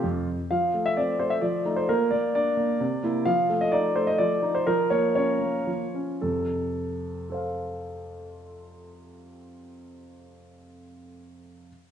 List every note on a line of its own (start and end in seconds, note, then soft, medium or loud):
0.00 0.36 F2 soft
0.00 0.27 F4 medium
0.51 1.40 F3 soft
0.51 0.85 F5 medium
0.74 1.11 A3 soft
0.86 0.97 E5 medium
0.97 1.34 C4 soft
0.97 1.20 D5 medium
1.19 1.43 A3 soft
1.19 1.31 C5 medium
1.30 1.42 E5 medium
1.41 1.87 F3 soft
1.41 1.77 D5 soft
1.65 1.86 A3 soft
1.65 1.87 D#4 soft
1.76 1.89 C5 medium
1.89 2.10 A#3 soft
1.89 2.12 A#4 medium
2.11 2.48 A#3 soft
2.11 2.34 D5 medium
2.35 2.71 D4 soft
2.35 3.03 D5 medium
2.57 2.80 A#3 soft
2.80 3.24 C3 soft
3.03 3.24 A#3 soft
3.03 3.24 E4 soft
3.25 4.17 F3 medium
3.25 3.60 F5 medium
3.50 3.86 A3 soft
3.61 3.72 D#5 medium
3.72 4.09 D#4 soft
3.72 3.95 D5 medium
3.96 4.33 A3 soft
3.96 4.07 C5 medium
4.07 4.19 D#5 medium
4.18 4.65 F3 soft
4.18 4.54 D5 medium
4.43 4.67 D#4 soft
4.55 4.67 C5 medium
4.67 5.65 F3 medium
4.67 4.91 A#4 medium
4.90 5.31 A#3 soft
4.90 5.14 C#5 medium
5.15 5.57 C#4 soft
5.15 5.94 C#5 medium
5.41 5.83 A#3 soft
5.67 6.20 F3 soft
5.95 6.22 C#4 soft
6.21 10.08 F2 soft
6.21 10.08 C3 soft
6.21 7.28 A4 soft
7.30 10.93 A4 soft
7.30 10.94 C5 soft
7.34 10.95 F5 soft